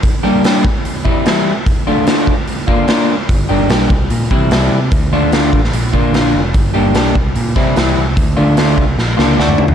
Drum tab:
HH |o---o---o---o---|o---o---o---o---|o---o---o---o---|o---o---o---o---|
SD |----o-------o---|----o-------o---|----o-------o---|----o--o----o---|
T2 |----------------|----------------|----------------|----------------|
FT |----------------|----------------|----------------|----------------|
BD |o-----o---o-----|o-----o---o-----|o-----o---o-----|o-----o---o-----|

HH |o---o---o---o---|o---o-----------|
SD |----o-----o-o---|----o---o-o-o---|
T2 |----------------|-------------o--|
FT |----------------|--------------oo|
BD |o-----o---o-----|o-----o---------|